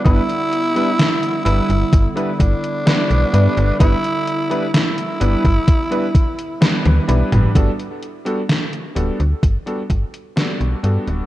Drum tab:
HH |xxxxxxxxxxxxxxxx|xxxxxxxxxxxxxxxx|xxxxxxxxxxxxxxxx|
SD |----o-------o---|----o-------o---|----o-------o---|
T1 |----------------|------------oo--|----------------|
T2 |----------------|---------------o|----------------|
BD |o-------o-o-----|o------oo-o-----|o-------o-o-----|